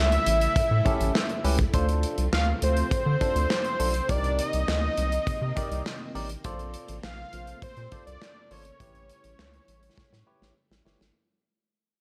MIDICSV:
0, 0, Header, 1, 7, 480
1, 0, Start_track
1, 0, Tempo, 588235
1, 1421, Time_signature, 4, 2, 24, 8
1, 9796, End_track
2, 0, Start_track
2, 0, Title_t, "Analog synth lead"
2, 0, Program_c, 0, 81
2, 0, Note_on_c, 0, 76, 116
2, 1180, Note_off_c, 0, 76, 0
2, 1904, Note_on_c, 0, 77, 116
2, 2011, Note_off_c, 0, 77, 0
2, 2151, Note_on_c, 0, 72, 109
2, 3348, Note_on_c, 0, 74, 110
2, 3360, Note_off_c, 0, 72, 0
2, 3580, Note_off_c, 0, 74, 0
2, 3585, Note_on_c, 0, 75, 109
2, 4990, Note_off_c, 0, 75, 0
2, 5753, Note_on_c, 0, 77, 112
2, 6194, Note_off_c, 0, 77, 0
2, 6231, Note_on_c, 0, 72, 110
2, 6561, Note_off_c, 0, 72, 0
2, 6583, Note_on_c, 0, 74, 109
2, 6947, Note_on_c, 0, 73, 99
2, 6959, Note_off_c, 0, 74, 0
2, 8624, Note_off_c, 0, 73, 0
2, 9796, End_track
3, 0, Start_track
3, 0, Title_t, "Tine electric piano"
3, 0, Program_c, 1, 4
3, 693, Note_on_c, 1, 61, 91
3, 694, Note_on_c, 1, 64, 83
3, 698, Note_on_c, 1, 67, 80
3, 700, Note_on_c, 1, 69, 102
3, 909, Note_off_c, 1, 61, 0
3, 909, Note_off_c, 1, 64, 0
3, 911, Note_off_c, 1, 67, 0
3, 912, Note_off_c, 1, 69, 0
3, 1176, Note_on_c, 1, 61, 91
3, 1178, Note_on_c, 1, 64, 84
3, 1180, Note_on_c, 1, 67, 78
3, 1182, Note_on_c, 1, 71, 93
3, 1284, Note_off_c, 1, 61, 0
3, 1285, Note_off_c, 1, 64, 0
3, 1286, Note_off_c, 1, 67, 0
3, 1287, Note_off_c, 1, 71, 0
3, 1416, Note_on_c, 1, 62, 90
3, 1420, Note_on_c, 1, 65, 76
3, 1421, Note_on_c, 1, 69, 87
3, 1422, Note_on_c, 1, 72, 102
3, 1842, Note_off_c, 1, 62, 0
3, 1844, Note_off_c, 1, 65, 0
3, 1844, Note_off_c, 1, 69, 0
3, 1845, Note_off_c, 1, 72, 0
3, 2617, Note_on_c, 1, 62, 83
3, 2622, Note_on_c, 1, 65, 71
3, 2622, Note_on_c, 1, 69, 75
3, 2624, Note_on_c, 1, 72, 89
3, 2831, Note_off_c, 1, 62, 0
3, 2833, Note_off_c, 1, 65, 0
3, 2833, Note_off_c, 1, 69, 0
3, 2834, Note_off_c, 1, 72, 0
3, 3096, Note_on_c, 1, 62, 86
3, 3099, Note_on_c, 1, 65, 74
3, 3100, Note_on_c, 1, 69, 75
3, 3102, Note_on_c, 1, 72, 97
3, 3204, Note_off_c, 1, 62, 0
3, 3205, Note_off_c, 1, 65, 0
3, 3206, Note_off_c, 1, 69, 0
3, 3207, Note_off_c, 1, 72, 0
3, 3334, Note_on_c, 1, 63, 75
3, 3336, Note_on_c, 1, 67, 67
3, 3338, Note_on_c, 1, 70, 74
3, 3341, Note_on_c, 1, 74, 86
3, 3761, Note_off_c, 1, 63, 0
3, 3762, Note_off_c, 1, 67, 0
3, 3763, Note_off_c, 1, 70, 0
3, 3765, Note_off_c, 1, 74, 0
3, 4534, Note_on_c, 1, 63, 94
3, 4538, Note_on_c, 1, 67, 81
3, 4540, Note_on_c, 1, 70, 85
3, 4542, Note_on_c, 1, 74, 100
3, 4749, Note_off_c, 1, 63, 0
3, 4751, Note_off_c, 1, 67, 0
3, 4752, Note_off_c, 1, 70, 0
3, 4753, Note_off_c, 1, 74, 0
3, 5015, Note_on_c, 1, 63, 90
3, 5017, Note_on_c, 1, 67, 77
3, 5021, Note_on_c, 1, 70, 77
3, 5022, Note_on_c, 1, 74, 100
3, 5124, Note_off_c, 1, 63, 0
3, 5124, Note_off_c, 1, 67, 0
3, 5126, Note_off_c, 1, 70, 0
3, 5127, Note_off_c, 1, 74, 0
3, 5261, Note_on_c, 1, 65, 100
3, 5263, Note_on_c, 1, 69, 88
3, 5265, Note_on_c, 1, 72, 89
3, 5267, Note_on_c, 1, 74, 99
3, 5685, Note_off_c, 1, 65, 0
3, 5685, Note_off_c, 1, 69, 0
3, 5686, Note_off_c, 1, 72, 0
3, 5688, Note_off_c, 1, 74, 0
3, 6459, Note_on_c, 1, 65, 82
3, 6461, Note_on_c, 1, 69, 76
3, 6464, Note_on_c, 1, 72, 68
3, 6467, Note_on_c, 1, 74, 87
3, 6672, Note_off_c, 1, 65, 0
3, 6672, Note_off_c, 1, 69, 0
3, 6674, Note_off_c, 1, 72, 0
3, 6676, Note_off_c, 1, 74, 0
3, 6941, Note_on_c, 1, 65, 68
3, 6943, Note_on_c, 1, 69, 65
3, 6946, Note_on_c, 1, 72, 67
3, 6949, Note_on_c, 1, 74, 75
3, 7047, Note_off_c, 1, 65, 0
3, 7048, Note_off_c, 1, 69, 0
3, 7049, Note_off_c, 1, 72, 0
3, 7051, Note_off_c, 1, 74, 0
3, 7179, Note_on_c, 1, 64, 79
3, 7181, Note_on_c, 1, 67, 73
3, 7182, Note_on_c, 1, 71, 67
3, 7184, Note_on_c, 1, 73, 84
3, 7604, Note_off_c, 1, 64, 0
3, 7605, Note_off_c, 1, 67, 0
3, 7605, Note_off_c, 1, 71, 0
3, 7606, Note_off_c, 1, 73, 0
3, 8377, Note_on_c, 1, 64, 92
3, 8378, Note_on_c, 1, 67, 89
3, 8379, Note_on_c, 1, 71, 83
3, 8382, Note_on_c, 1, 73, 95
3, 8591, Note_off_c, 1, 64, 0
3, 8591, Note_off_c, 1, 67, 0
3, 8592, Note_off_c, 1, 71, 0
3, 8593, Note_off_c, 1, 73, 0
3, 8857, Note_on_c, 1, 64, 85
3, 8860, Note_on_c, 1, 67, 70
3, 8861, Note_on_c, 1, 71, 77
3, 8864, Note_on_c, 1, 73, 85
3, 8965, Note_off_c, 1, 64, 0
3, 8966, Note_off_c, 1, 67, 0
3, 8967, Note_off_c, 1, 71, 0
3, 8968, Note_off_c, 1, 73, 0
3, 9796, End_track
4, 0, Start_track
4, 0, Title_t, "Analog polysynth"
4, 0, Program_c, 2, 90
4, 1413, Note_on_c, 2, 72, 113
4, 1415, Note_on_c, 2, 57, 93
4, 1415, Note_on_c, 2, 65, 98
4, 1518, Note_off_c, 2, 72, 0
4, 1519, Note_off_c, 2, 57, 0
4, 1519, Note_off_c, 2, 65, 0
4, 2139, Note_on_c, 2, 57, 94
4, 2139, Note_on_c, 2, 65, 97
4, 2139, Note_on_c, 2, 72, 105
4, 2344, Note_off_c, 2, 57, 0
4, 2344, Note_off_c, 2, 65, 0
4, 2344, Note_off_c, 2, 72, 0
4, 5257, Note_on_c, 2, 57, 106
4, 5258, Note_on_c, 2, 72, 107
4, 5260, Note_on_c, 2, 65, 93
4, 5360, Note_off_c, 2, 57, 0
4, 5361, Note_off_c, 2, 72, 0
4, 5362, Note_off_c, 2, 65, 0
4, 5978, Note_on_c, 2, 57, 93
4, 5978, Note_on_c, 2, 65, 91
4, 5979, Note_on_c, 2, 72, 104
4, 6183, Note_off_c, 2, 57, 0
4, 6183, Note_off_c, 2, 65, 0
4, 6183, Note_off_c, 2, 72, 0
4, 9796, End_track
5, 0, Start_track
5, 0, Title_t, "String machine"
5, 0, Program_c, 3, 50
5, 0, Note_on_c, 3, 49, 76
5, 0, Note_on_c, 3, 55, 67
5, 0, Note_on_c, 3, 57, 72
5, 0, Note_on_c, 3, 64, 86
5, 1397, Note_off_c, 3, 49, 0
5, 1397, Note_off_c, 3, 55, 0
5, 1397, Note_off_c, 3, 64, 0
5, 1415, Note_on_c, 3, 53, 67
5, 1416, Note_on_c, 3, 48, 81
5, 1416, Note_on_c, 3, 60, 90
5, 3307, Note_off_c, 3, 57, 0
5, 3318, Note_off_c, 3, 53, 0
5, 3340, Note_on_c, 3, 51, 76
5, 3342, Note_on_c, 3, 58, 70
5, 5241, Note_off_c, 3, 51, 0
5, 5266, Note_on_c, 3, 57, 72
5, 7145, Note_off_c, 3, 60, 0
5, 7146, Note_off_c, 3, 48, 0
5, 7149, Note_off_c, 3, 58, 0
5, 7179, Note_on_c, 3, 55, 77
5, 7180, Note_on_c, 3, 64, 92
5, 7182, Note_on_c, 3, 49, 76
5, 9070, Note_off_c, 3, 57, 0
5, 9081, Note_off_c, 3, 55, 0
5, 9081, Note_off_c, 3, 64, 0
5, 9082, Note_off_c, 3, 49, 0
5, 9796, End_track
6, 0, Start_track
6, 0, Title_t, "Analog synth bass"
6, 0, Program_c, 4, 38
6, 0, Note_on_c, 4, 37, 96
6, 149, Note_off_c, 4, 37, 0
6, 217, Note_on_c, 4, 33, 99
6, 389, Note_off_c, 4, 33, 0
6, 456, Note_on_c, 4, 45, 47
6, 505, Note_off_c, 4, 45, 0
6, 580, Note_on_c, 4, 45, 99
6, 665, Note_off_c, 4, 45, 0
6, 819, Note_on_c, 4, 33, 96
6, 904, Note_off_c, 4, 33, 0
6, 1179, Note_on_c, 4, 37, 93
6, 1350, Note_off_c, 4, 37, 0
6, 1417, Note_on_c, 4, 38, 105
6, 1673, Note_off_c, 4, 38, 0
6, 1779, Note_on_c, 4, 36, 87
6, 1865, Note_off_c, 4, 36, 0
6, 1899, Note_on_c, 4, 38, 94
6, 2070, Note_off_c, 4, 38, 0
6, 2140, Note_on_c, 4, 38, 95
6, 2310, Note_off_c, 4, 38, 0
6, 2377, Note_on_c, 4, 50, 44
6, 2425, Note_off_c, 4, 50, 0
6, 2498, Note_on_c, 4, 50, 101
6, 2584, Note_off_c, 4, 50, 0
6, 2738, Note_on_c, 4, 38, 101
6, 2824, Note_off_c, 4, 38, 0
6, 3100, Note_on_c, 4, 35, 95
6, 3270, Note_off_c, 4, 35, 0
6, 3340, Note_on_c, 4, 36, 105
6, 3595, Note_off_c, 4, 36, 0
6, 3703, Note_on_c, 4, 36, 95
6, 3787, Note_off_c, 4, 36, 0
6, 3821, Note_on_c, 4, 38, 101
6, 3991, Note_off_c, 4, 38, 0
6, 4062, Note_on_c, 4, 36, 98
6, 4231, Note_off_c, 4, 36, 0
6, 4299, Note_on_c, 4, 48, 46
6, 4347, Note_off_c, 4, 48, 0
6, 4420, Note_on_c, 4, 48, 102
6, 4505, Note_off_c, 4, 48, 0
6, 4661, Note_on_c, 4, 36, 95
6, 4746, Note_off_c, 4, 36, 0
6, 5020, Note_on_c, 4, 33, 85
6, 5190, Note_off_c, 4, 33, 0
6, 5260, Note_on_c, 4, 34, 101
6, 5516, Note_off_c, 4, 34, 0
6, 5622, Note_on_c, 4, 33, 97
6, 5707, Note_off_c, 4, 33, 0
6, 5741, Note_on_c, 4, 34, 100
6, 5911, Note_off_c, 4, 34, 0
6, 5983, Note_on_c, 4, 34, 101
6, 6152, Note_off_c, 4, 34, 0
6, 6219, Note_on_c, 4, 46, 49
6, 6267, Note_off_c, 4, 46, 0
6, 6341, Note_on_c, 4, 46, 106
6, 6426, Note_off_c, 4, 46, 0
6, 6584, Note_on_c, 4, 36, 86
6, 6668, Note_off_c, 4, 36, 0
6, 6944, Note_on_c, 4, 32, 93
6, 7113, Note_off_c, 4, 32, 0
6, 7181, Note_on_c, 4, 33, 105
6, 7436, Note_off_c, 4, 33, 0
6, 7543, Note_on_c, 4, 33, 86
6, 7627, Note_off_c, 4, 33, 0
6, 7662, Note_on_c, 4, 37, 102
6, 7832, Note_off_c, 4, 37, 0
6, 7900, Note_on_c, 4, 33, 104
6, 8071, Note_off_c, 4, 33, 0
6, 8140, Note_on_c, 4, 45, 48
6, 8188, Note_off_c, 4, 45, 0
6, 8263, Note_on_c, 4, 45, 94
6, 8347, Note_off_c, 4, 45, 0
6, 8500, Note_on_c, 4, 33, 93
6, 8585, Note_off_c, 4, 33, 0
6, 8739, Note_on_c, 4, 33, 99
6, 8825, Note_off_c, 4, 33, 0
6, 8859, Note_on_c, 4, 31, 94
6, 8944, Note_off_c, 4, 31, 0
6, 8983, Note_on_c, 4, 32, 93
6, 9067, Note_off_c, 4, 32, 0
6, 9796, End_track
7, 0, Start_track
7, 0, Title_t, "Drums"
7, 98, Note_on_c, 9, 42, 39
7, 180, Note_off_c, 9, 42, 0
7, 216, Note_on_c, 9, 42, 78
7, 297, Note_off_c, 9, 42, 0
7, 337, Note_on_c, 9, 42, 47
7, 419, Note_off_c, 9, 42, 0
7, 456, Note_on_c, 9, 36, 126
7, 459, Note_on_c, 9, 42, 92
7, 538, Note_off_c, 9, 36, 0
7, 540, Note_off_c, 9, 42, 0
7, 699, Note_on_c, 9, 42, 71
7, 700, Note_on_c, 9, 36, 103
7, 781, Note_off_c, 9, 36, 0
7, 781, Note_off_c, 9, 42, 0
7, 821, Note_on_c, 9, 42, 57
7, 902, Note_off_c, 9, 42, 0
7, 940, Note_on_c, 9, 38, 119
7, 949, Note_on_c, 9, 39, 95
7, 1022, Note_off_c, 9, 38, 0
7, 1030, Note_off_c, 9, 39, 0
7, 1056, Note_on_c, 9, 42, 35
7, 1138, Note_off_c, 9, 42, 0
7, 1179, Note_on_c, 9, 46, 74
7, 1261, Note_off_c, 9, 46, 0
7, 1295, Note_on_c, 9, 36, 92
7, 1295, Note_on_c, 9, 42, 59
7, 1376, Note_off_c, 9, 42, 0
7, 1377, Note_off_c, 9, 36, 0
7, 1417, Note_on_c, 9, 36, 108
7, 1417, Note_on_c, 9, 42, 93
7, 1498, Note_off_c, 9, 42, 0
7, 1499, Note_off_c, 9, 36, 0
7, 1539, Note_on_c, 9, 42, 41
7, 1621, Note_off_c, 9, 42, 0
7, 1658, Note_on_c, 9, 42, 73
7, 1740, Note_off_c, 9, 42, 0
7, 1777, Note_on_c, 9, 42, 52
7, 1859, Note_off_c, 9, 42, 0
7, 1900, Note_on_c, 9, 38, 125
7, 1908, Note_on_c, 9, 39, 110
7, 1981, Note_off_c, 9, 38, 0
7, 1990, Note_off_c, 9, 39, 0
7, 2138, Note_on_c, 9, 42, 75
7, 2220, Note_off_c, 9, 42, 0
7, 2257, Note_on_c, 9, 42, 48
7, 2338, Note_off_c, 9, 42, 0
7, 2377, Note_on_c, 9, 36, 127
7, 2380, Note_on_c, 9, 42, 97
7, 2458, Note_off_c, 9, 36, 0
7, 2461, Note_off_c, 9, 42, 0
7, 2619, Note_on_c, 9, 42, 74
7, 2620, Note_on_c, 9, 36, 88
7, 2701, Note_off_c, 9, 42, 0
7, 2702, Note_off_c, 9, 36, 0
7, 2741, Note_on_c, 9, 42, 57
7, 2823, Note_off_c, 9, 42, 0
7, 2858, Note_on_c, 9, 38, 117
7, 2866, Note_on_c, 9, 39, 96
7, 2939, Note_off_c, 9, 38, 0
7, 2948, Note_off_c, 9, 39, 0
7, 2974, Note_on_c, 9, 42, 40
7, 3056, Note_off_c, 9, 42, 0
7, 3099, Note_on_c, 9, 46, 69
7, 3181, Note_off_c, 9, 46, 0
7, 3215, Note_on_c, 9, 42, 61
7, 3297, Note_off_c, 9, 42, 0
7, 3339, Note_on_c, 9, 42, 83
7, 3340, Note_on_c, 9, 36, 116
7, 3421, Note_off_c, 9, 36, 0
7, 3421, Note_off_c, 9, 42, 0
7, 3460, Note_on_c, 9, 42, 38
7, 3542, Note_off_c, 9, 42, 0
7, 3580, Note_on_c, 9, 42, 83
7, 3661, Note_off_c, 9, 42, 0
7, 3698, Note_on_c, 9, 42, 52
7, 3780, Note_off_c, 9, 42, 0
7, 3821, Note_on_c, 9, 38, 127
7, 3830, Note_on_c, 9, 39, 109
7, 3903, Note_off_c, 9, 38, 0
7, 3911, Note_off_c, 9, 39, 0
7, 4059, Note_on_c, 9, 42, 73
7, 4141, Note_off_c, 9, 42, 0
7, 4179, Note_on_c, 9, 42, 51
7, 4261, Note_off_c, 9, 42, 0
7, 4299, Note_on_c, 9, 36, 127
7, 4301, Note_on_c, 9, 42, 92
7, 4381, Note_off_c, 9, 36, 0
7, 4382, Note_off_c, 9, 42, 0
7, 4542, Note_on_c, 9, 42, 69
7, 4543, Note_on_c, 9, 36, 97
7, 4624, Note_off_c, 9, 42, 0
7, 4625, Note_off_c, 9, 36, 0
7, 4664, Note_on_c, 9, 42, 50
7, 4746, Note_off_c, 9, 42, 0
7, 4782, Note_on_c, 9, 38, 127
7, 4791, Note_on_c, 9, 39, 97
7, 4864, Note_off_c, 9, 38, 0
7, 4872, Note_off_c, 9, 39, 0
7, 5021, Note_on_c, 9, 46, 73
7, 5103, Note_off_c, 9, 46, 0
7, 5136, Note_on_c, 9, 42, 54
7, 5218, Note_off_c, 9, 42, 0
7, 5258, Note_on_c, 9, 42, 95
7, 5261, Note_on_c, 9, 36, 108
7, 5340, Note_off_c, 9, 42, 0
7, 5342, Note_off_c, 9, 36, 0
7, 5379, Note_on_c, 9, 42, 37
7, 5461, Note_off_c, 9, 42, 0
7, 5497, Note_on_c, 9, 42, 79
7, 5579, Note_off_c, 9, 42, 0
7, 5618, Note_on_c, 9, 42, 54
7, 5699, Note_off_c, 9, 42, 0
7, 5741, Note_on_c, 9, 38, 127
7, 5749, Note_on_c, 9, 39, 102
7, 5822, Note_off_c, 9, 38, 0
7, 5831, Note_off_c, 9, 39, 0
7, 5980, Note_on_c, 9, 42, 73
7, 6061, Note_off_c, 9, 42, 0
7, 6098, Note_on_c, 9, 42, 49
7, 6179, Note_off_c, 9, 42, 0
7, 6219, Note_on_c, 9, 36, 126
7, 6220, Note_on_c, 9, 42, 92
7, 6301, Note_off_c, 9, 36, 0
7, 6301, Note_off_c, 9, 42, 0
7, 6338, Note_on_c, 9, 42, 38
7, 6419, Note_off_c, 9, 42, 0
7, 6460, Note_on_c, 9, 42, 71
7, 6463, Note_on_c, 9, 36, 92
7, 6542, Note_off_c, 9, 42, 0
7, 6544, Note_off_c, 9, 36, 0
7, 6586, Note_on_c, 9, 42, 53
7, 6668, Note_off_c, 9, 42, 0
7, 6704, Note_on_c, 9, 38, 127
7, 6713, Note_on_c, 9, 39, 105
7, 6786, Note_off_c, 9, 38, 0
7, 6794, Note_off_c, 9, 39, 0
7, 6944, Note_on_c, 9, 46, 76
7, 7025, Note_off_c, 9, 46, 0
7, 7058, Note_on_c, 9, 42, 60
7, 7140, Note_off_c, 9, 42, 0
7, 7182, Note_on_c, 9, 36, 99
7, 7182, Note_on_c, 9, 42, 95
7, 7264, Note_off_c, 9, 36, 0
7, 7264, Note_off_c, 9, 42, 0
7, 7303, Note_on_c, 9, 42, 36
7, 7385, Note_off_c, 9, 42, 0
7, 7422, Note_on_c, 9, 42, 76
7, 7503, Note_off_c, 9, 42, 0
7, 7539, Note_on_c, 9, 42, 55
7, 7621, Note_off_c, 9, 42, 0
7, 7662, Note_on_c, 9, 38, 117
7, 7671, Note_on_c, 9, 39, 102
7, 7744, Note_off_c, 9, 38, 0
7, 7752, Note_off_c, 9, 39, 0
7, 7780, Note_on_c, 9, 42, 35
7, 7862, Note_off_c, 9, 42, 0
7, 7901, Note_on_c, 9, 42, 78
7, 7983, Note_off_c, 9, 42, 0
7, 8020, Note_on_c, 9, 42, 49
7, 8101, Note_off_c, 9, 42, 0
7, 8140, Note_on_c, 9, 36, 126
7, 8144, Note_on_c, 9, 38, 73
7, 8222, Note_off_c, 9, 36, 0
7, 8226, Note_off_c, 9, 38, 0
7, 8263, Note_on_c, 9, 38, 59
7, 8345, Note_off_c, 9, 38, 0
7, 8504, Note_on_c, 9, 38, 73
7, 8586, Note_off_c, 9, 38, 0
7, 8744, Note_on_c, 9, 38, 89
7, 8825, Note_off_c, 9, 38, 0
7, 8866, Note_on_c, 9, 38, 111
7, 8947, Note_off_c, 9, 38, 0
7, 8985, Note_on_c, 9, 38, 112
7, 9066, Note_off_c, 9, 38, 0
7, 9796, End_track
0, 0, End_of_file